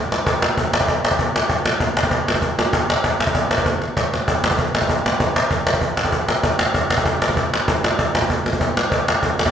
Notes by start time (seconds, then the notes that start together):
0.12 cajon slap
0.27 cajon bass
0.42 cajon slap
0.57 cajon bass
0.73 cajon slap
0.81 cajon bass
0.88 cajon bass
1.05 cajon slap
1.11 cajon bass
1.19 cajon bass
1.36 cajon slap
1.49 cajon bass
1.66 cajon slap
1.80 cajon bass
1.97 cajon slap
2.03 cajon bass
2.11 cajon bass
2.28 cajon slap
2.34 cajon bass
2.42 cajon bass
2.59 cajon slap
2.73 cajon bass
2.90 cajon slap
3.04 cajon bass
3.20 cajon slap
3.27 cajon bass
3.35 cajon bass
3.51 cajon slap
3.58 cajon bass
3.66 cajon bass, cajon slap
3.82 cajon slap
3.97 cajon bass, cajon slap
4.14 cajon slap
4.28 cajon bass
4.44 cajon slap
4.51 cajon bass
4.59 cajon bass
4.75 cajon slap
4.82 cajon bass
4.89 cajon bass
5.06 cajon slap
5.20 cajon bass
5.36 cajon slap
5.51 cajon bass
5.67 cajon slap
5.74 cajon bass
5.81 cajon bass
5.97 cajon slap
6.05 cajon bass
6.12 cajon bass
6.28 cajon slap
6.43 cajon bass
6.59 cajon slap
6.74 cajon bass
6.90 cajon slap
6.98 cajon bass
7.05 cajon bass
7.22 cajon slap
7.29 cajon bass
7.37 cajon bass
7.54 cajon slap
7.68 cajon bass
7.84 cajon slap
7.99 cajon bass
8.15 cajon slap
8.22 cajon bass
8.30 cajon bass
8.46 cajon slap
8.53 cajon bass
8.61 cajon bass
8.77 cajon slap
8.92 cajon bass
9.08 cajon slap
9.23 cajon bass
9.39 cajon slap
9.46 cajon bass